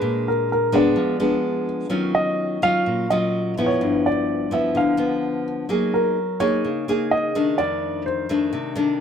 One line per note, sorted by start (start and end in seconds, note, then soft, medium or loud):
0.00 0.94 A#2 medium
0.00 0.69 G#3 soft
0.00 0.69 D4 medium
0.00 0.28 B4 medium
0.28 0.49 A#4 medium
0.52 0.75 A#4 medium
0.72 1.16 G#3 medium
0.72 1.16 B3 medium
0.72 1.16 D4 medium
0.72 1.65 D5 medium
0.96 1.88 F3 medium
1.20 1.87 G#3 medium
1.20 1.87 B3 soft
1.20 1.87 D4 medium
1.89 2.82 D#3 medium
1.89 2.57 F#3 soft
1.89 2.57 C#4 soft
1.89 2.58 F4 medium
2.15 2.63 D#5 medium
2.62 3.06 F#3 medium
2.62 3.06 C#4 medium
2.62 3.06 F4 medium
2.62 3.06 F5 loud
2.86 3.78 A#2 medium
3.10 3.53 F#3 medium
3.10 3.53 C#4 medium
3.10 3.54 F4 medium
3.10 3.54 D#5 medium
3.57 4.48 F3 soft
3.57 4.48 B3 medium
3.57 4.48 E4 medium
3.66 4.06 C#5 medium
3.81 4.73 G2 medium
4.06 4.53 D5 medium
4.51 4.94 F3 medium
4.51 4.95 B3 medium
4.51 4.95 E4 medium
4.51 4.76 E5 medium
4.75 5.67 D3 medium
4.75 5.43 F5 medium
4.97 5.65 F3 medium
4.97 5.65 B3 medium
5.69 6.61 F#3 medium
5.69 6.16 A#3 soft
5.69 6.16 D#4 soft
5.69 6.16 G#4 medium
5.94 6.42 A#4 medium
6.40 6.83 A#3 medium
6.40 6.83 D#4 medium
6.40 6.83 G#4 medium
6.40 7.13 C#5 medium
6.65 7.56 C#3 medium
6.88 7.31 A#3 medium
6.88 7.31 D#4 medium
6.88 7.31 G#4 medium
7.11 7.60 D#5 medium
7.35 8.25 D#3 medium
7.35 8.25 A3 soft
7.35 8.26 D4 medium
7.58 8.50 F2 medium
7.58 8.02 D5 medium
8.06 8.72 C5 medium
8.29 8.72 D#3 medium
8.29 8.73 A3 medium
8.29 8.73 D4 medium
8.53 9.00 C3 medium
8.76 9.00 D#3 medium
8.76 9.00 A3 medium
8.76 9.00 D4 medium